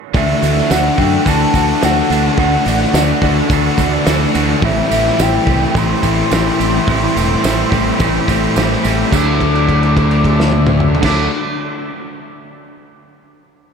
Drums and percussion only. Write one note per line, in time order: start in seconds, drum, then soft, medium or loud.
0.14 kick loud
0.14 open hi-hat medium
0.14 tambourine soft
0.42 open hi-hat medium
0.42 tambourine medium
0.57 snare soft
0.70 snare loud
0.70 open hi-hat medium
0.70 tambourine loud
0.98 kick medium
0.98 open hi-hat medium
1.26 kick loud
1.26 open hi-hat medium
1.26 tambourine medium
1.54 kick medium
1.54 open hi-hat medium
1.54 tambourine medium
1.81 snare loud
1.81 open hi-hat medium
1.81 tambourine medium
1.97 snare soft
2.10 open hi-hat medium
2.10 tambourine medium
2.37 kick loud
2.37 open hi-hat medium
2.37 tambourine soft
2.65 open hi-hat medium
2.65 tambourine medium
2.81 snare soft
2.93 snare loud
2.93 open hi-hat medium
2.93 tambourine medium
3.22 kick medium
3.22 open hi-hat medium
3.50 kick loud
3.50 open hi-hat medium
3.50 tambourine medium
3.78 kick medium
3.78 open hi-hat medium
3.78 tambourine medium
4.05 snare loud
4.05 open hi-hat medium
4.05 tambourine loud
4.34 open hi-hat medium
4.34 tambourine medium
4.62 kick loud
4.62 open hi-hat medium
4.62 tambourine soft
4.91 open hi-hat medium
4.91 tambourine medium
5.06 snare soft
5.19 snare loud
5.19 open hi-hat medium
5.19 tambourine loud
5.47 kick medium
5.47 open hi-hat medium
5.75 kick loud
5.75 open hi-hat medium
5.75 tambourine medium
6.03 kick medium
6.03 open hi-hat medium
6.03 tambourine medium
6.31 snare loud
6.31 open hi-hat medium
6.31 tambourine medium
6.47 snare soft
6.60 open hi-hat medium
6.60 tambourine medium
6.88 kick loud
6.88 open hi-hat medium
6.88 tambourine soft
7.16 open hi-hat medium
7.16 tambourine medium
7.44 snare loud
7.44 open hi-hat medium
7.44 tambourine medium
7.72 kick medium
7.72 open hi-hat medium
7.72 tambourine soft
8.00 kick loud
8.00 open hi-hat medium
8.00 tambourine medium
8.28 kick medium
8.28 open hi-hat medium
8.28 tambourine medium
8.56 snare loud
8.56 open hi-hat medium
8.56 tambourine medium
8.72 snare soft
8.84 open hi-hat medium
8.84 tambourine medium
9.12 kick loud
9.12 crash medium
9.12 tambourine medium
9.41 kick medium
9.41 crash soft
9.55 crash soft
9.69 kick medium
9.69 crash soft
9.83 crash soft
9.97 kick medium
9.97 crash medium
10.11 crash medium
10.24 kick medium
10.24 crash medium
10.40 snare medium
10.52 high tom medium
10.67 mid tom loud
10.80 mid tom loud
10.95 floor tom loud
11.03 kick loud
11.03 snare loud
11.03 crash loud